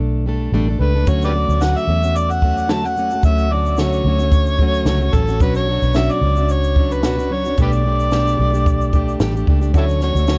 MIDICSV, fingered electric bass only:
0, 0, Header, 1, 2, 480
1, 0, Start_track
1, 0, Key_signature, 2, "major"
1, 0, Tempo, 542005
1, 947, Time_signature, 4, 2, 24, 8
1, 9193, End_track
2, 0, Start_track
2, 0, Title_t, "Fingered electric bass"
2, 0, Program_c, 0, 33
2, 0, Note_on_c, 0, 35, 77
2, 429, Note_off_c, 0, 35, 0
2, 462, Note_on_c, 0, 33, 72
2, 685, Note_off_c, 0, 33, 0
2, 702, Note_on_c, 0, 37, 70
2, 925, Note_off_c, 0, 37, 0
2, 948, Note_on_c, 0, 38, 78
2, 1290, Note_off_c, 0, 38, 0
2, 1315, Note_on_c, 0, 38, 85
2, 1538, Note_off_c, 0, 38, 0
2, 1659, Note_on_c, 0, 40, 73
2, 2829, Note_off_c, 0, 40, 0
2, 2864, Note_on_c, 0, 38, 87
2, 3551, Note_off_c, 0, 38, 0
2, 3583, Note_on_c, 0, 38, 85
2, 4270, Note_off_c, 0, 38, 0
2, 4298, Note_on_c, 0, 37, 85
2, 4524, Note_off_c, 0, 37, 0
2, 4545, Note_on_c, 0, 33, 83
2, 4788, Note_off_c, 0, 33, 0
2, 4788, Note_on_c, 0, 35, 85
2, 5130, Note_off_c, 0, 35, 0
2, 5155, Note_on_c, 0, 35, 85
2, 5378, Note_off_c, 0, 35, 0
2, 5502, Note_on_c, 0, 37, 84
2, 6669, Note_off_c, 0, 37, 0
2, 6708, Note_on_c, 0, 35, 84
2, 7392, Note_off_c, 0, 35, 0
2, 7432, Note_on_c, 0, 35, 79
2, 8113, Note_off_c, 0, 35, 0
2, 8146, Note_on_c, 0, 33, 76
2, 8367, Note_off_c, 0, 33, 0
2, 8387, Note_on_c, 0, 37, 73
2, 8607, Note_off_c, 0, 37, 0
2, 8627, Note_on_c, 0, 38, 92
2, 8968, Note_off_c, 0, 38, 0
2, 8985, Note_on_c, 0, 38, 91
2, 9193, Note_off_c, 0, 38, 0
2, 9193, End_track
0, 0, End_of_file